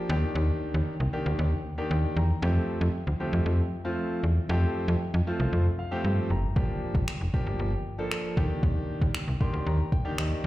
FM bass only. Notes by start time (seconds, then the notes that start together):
0.09 D#2
0.35 D#2
0.74 D#2
1.00 C2
1.26 D2
1.39 D#2
1.91 D#2
2.17 E2
2.42 F2
2.81 F2
3.07 D2
3.33 F2
3.46 F2
4.23 E2
4.49 F2
4.88 F2
5.14 F2
5.40 C2
5.53 F2
6.04 G2
6.30 F#1
6.56 G1
6.95 G1
7.21 F1
7.47 G1
7.59 G1
8.37 D#2
8.63 D#2
9.02 D#2
9.28 C2
9.54 D2
9.66 D#2
10.18 D#2